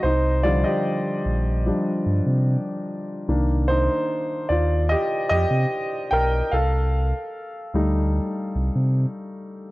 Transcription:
<<
  \new Staff \with { instrumentName = "Grand piano" } { \time 4/4 \key c \minor \tempo 4 = 74 <ees' c''>8 <f' d''>16 <g' ees''>4. r4. r16 | r8 <ees' c''>4 <f' d''>8 <g' ees''>8 <g' ees''>4 <bes' g''>8 | <a' f''>2. r4 | }
  \new Staff \with { instrumentName = "Grand piano" } { \clef bass \time 4/4 \key c \minor r8 <d f g>4. <f g d'>8 r4. | <ees bes d'>8 r2. r8 | r4. <g a ees'>8 r2 | }
  \new Staff \with { instrumentName = "Sub bass" } { \clef bass \time 4/4 \key c \minor c,4 r8 bes,,8. r16 g,16 c8 r8. | c,4 r8 ees,8. r16 f,16 c16 r8 b,,8 | c,4 r8 d,8. r16 c,16 c8 r8. | }
>>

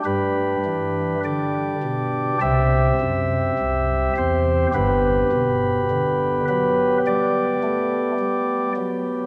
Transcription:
<<
  \new Staff \with { instrumentName = "Pipe organ" } { \time 4/4 \key g \major \tempo 4 = 52 << { b'4 d''4 e''4. c''8 | b'4. b'8 d''4. r8 | } \\ { <d' g'>2 <c' g'>2 | <b g'>1 | } >> }
  \new Staff \with { instrumentName = "Pipe organ" } { \clef bass \time 4/4 \key g \major <g, g>8 e8 d8 b,8 <c, c>8 fis,8 c,8 e,8 | <g,, g,>8 b,8 d8 fis8 g8 a8 g8 fis8 | }
>>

